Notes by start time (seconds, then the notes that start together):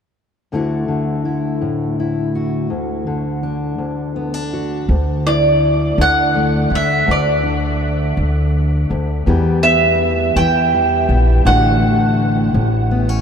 0.52 D2 D3 A3 E4 F#4
0.88 D3
1.25 E4
1.61 A2
2.00 E4
2.35 F#4
2.70 D2
3.07 D3
3.43 D4
3.78 D2
4.16 B3
4.34 D4
4.53 F#4
4.89 D2
5.26 E4 D5
5.98 D2 D3 F#5
6.35 A3
6.70 D2 E4
6.75 E5
7.06 D2
7.11 D5
7.43 D4
8.17 D2
8.90 D2
9.26 E2 E3 G3 B3 G4
9.63 B3 E5
10.36 E2 E3 G5
10.75 G3
11.09 A#1 B3
11.45 A1 A2 D3 A3 D4 F#4 F#5
11.81 D4
12.54 A1 A2
12.91 B3
13.09 C#4